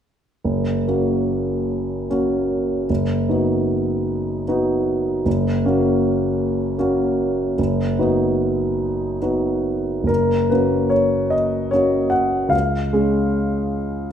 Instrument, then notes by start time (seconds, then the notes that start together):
grand piano
0.44 F#1
0.88 A#3 C#4 F#4
2.10 A#3 C#4 F#4
2.90 F#1
3.29 B3 D#4 F#4
4.48 B3 D#4 F#4
5.25 F#1
5.65 A#3 C#4 F#4
6.78 A#3 C#4 F#4
7.58 F#1
7.98 B3 D#4 F#4
9.22 B3 D#4 F#4
10.03 F#1 A#4
10.49 A#3 C#4 F#4 B4
10.90 C#5
11.30 D#5
11.71 A#3 C#4 F#4 C#5
12.10 F#5
12.48 C#2 F5
12.93 G#3 C#4 G#4